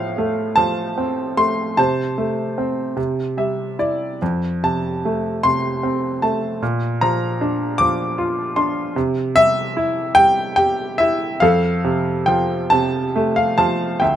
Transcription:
grand piano
Already playing: A2 F3 F5
0.18 A3
0.56 F3 A5
0.98 C4
1.37 A3 C6
1.77 C3 C5 A5
2.18 A3
2.58 C4
2.97 C3
3.37 G3 E5
3.79 E4 D5
4.22 F2
4.63 C3 A5
5.05 A3
5.43 C3 C6
5.83 C4
6.22 A3 A5
6.62 A#2
7.01 F3 A#5
7.41 D4
7.78 F3 D6
8.18 F4
8.56 D4 C6
8.96 C3
9.36 G3 E5
9.77 E4
10.15 G3 G5
10.56 G4 G5
10.98 E4 E5
11.40 F2 A4 F5
11.84 C3
12.26 F3 G5
12.70 C3 A5
13.16 A3
13.36 F5
13.58 F3 A5
14.00 D2 E5 G5

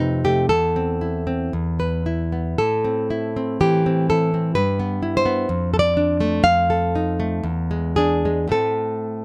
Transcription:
nylon-string guitar
Already playing: F2 C3 A3 B4
0.00 D#4
0.25 A3 G4
0.49 E2 A4
0.76 C4
1.01 E4
1.27 C4
1.53 E2
1.80 B4
2.06 E4
2.32 B3
2.58 A2 A4
2.85 C4
3.10 E4
3.36 C4
3.61 E3 G4
3.86 C4
4.10 E4 A4
4.34 C4
4.55 G2 B4
4.80 B3
5.03 E4
5.17 C5
5.26 B3
5.49 F2
5.74 A4
5.79 D5
5.97 D4
6.21 A3
6.43 F2 F5
6.70 A4
6.95 D#4
7.20 A3
7.44 E2
7.71 G#3
7.96 D4 G#4
8.25 G#3
8.48 A2 A3 C4
8.52 A4

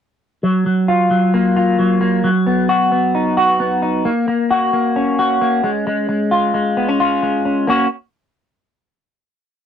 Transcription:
clean electric guitar
0.43 F#3
0.66 F#3
0.88 F4
1.11 F#3
1.34 A#3
1.56 F4
1.79 F#3
2.01 A#3
2.24 F#3
2.46 B3
2.69 F#4
2.92 B3
3.15 D#4
3.37 F#4
3.60 B3
3.82 D#4
4.05 A#3
4.28 A#3
4.51 F#4
4.73 A#3
4.96 C#4
5.19 F#4
5.41 A#3
5.64 G#3
5.87 G#3
6.09 G#3
6.31 F4
6.54 G#3
6.77 B3
6.89 C#4
7.00 F4
7.23 G#3
7.45 C#4
7.67 A#3 C#4 F#4

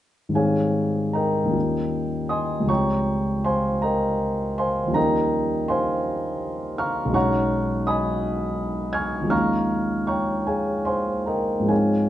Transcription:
grand piano
0.29 G#2 D#3 G3 C4
0.35 D#4 G#4 C#5 F5 G#5
1.13 A#4 D#5 G5 A#5
1.43 D#2 D#3
1.48 G3 C#4 F4
2.29 D#5 G#5 C6 D#6
2.60 C#2 F3
2.64 G3 C4
2.68 F4 C#5 G5 A#5 C#6
3.44 C5 F5 G#5 C6
3.82 A#4 D#5 G5 A#5
4.58 C5 F5 G#5 C6
4.86 D#2 F3
4.90 G3 C#4
4.94 D#4 A#4 D#5 G5 A#5
5.68 C5 F5 G#5 C6
6.78 F5 A#5 C#6 F6
7.05 B1 F#3 G#3
7.12 C#4 D#4 C#5 F#5 A#5 C#6
7.87 D#5 G#5 B5 D#6
8.93 G#5 C#6 F6 G#6
9.21 D#2 F3
9.26 G#3 C#4
9.30 D#4 F5 A#5 C#6 F6
10.07 C#5 G5 A#5 C#6
10.47 G#4 C#5 F5 G#5
10.85 C5 F5 G#5 C6
11.26 A#4 D#5 G5 A#5
11.60 G#2 F3
11.64 G#3 C4 D#4
11.68 G#4 C#5 F5 G#5

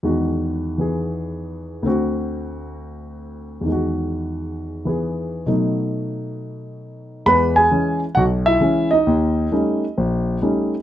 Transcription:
grand piano
0.03 E2 D#3 G#3 F#4
0.78 E3 B3 G#4
1.83 D2 D3 C4
1.88 F#4
3.61 E2 D#3
3.68 G#3 F#4
4.85 E3 B3 G#4
5.46 B2 F#3 A3 D#4
7.26 E2 G#3 B4 B5
7.56 G#4 G#5
7.71 E3 G#3 C#4
8.15 B1 F#4 F#5
8.46 E4 E5
8.61 E3 G#3 C#4
8.91 D#4 D#5
9.07 D#2
9.52 G3 A3 C#4 D#4
9.98 A#1
10.42 G3 A3 C#4 D#4

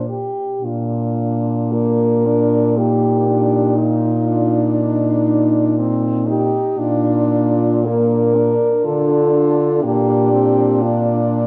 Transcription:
french horn
Already playing: A#2
0.09 G4
0.62 A#2 D4 F4
1.72 A#3 A#4
2.27 D4
2.77 A#3 D#4 G4
3.28 D4
3.78 D#4 F4
4.28 D4
4.78 D#4
5.79 C4
6.28 D#4 G4
6.78 A#2 D4 F4
7.85 A#3 D4 A#4
8.37 D4
8.85 D3 F4 A4
9.83 A#2 A#3 G4
10.33 C4
10.81 D4 F4

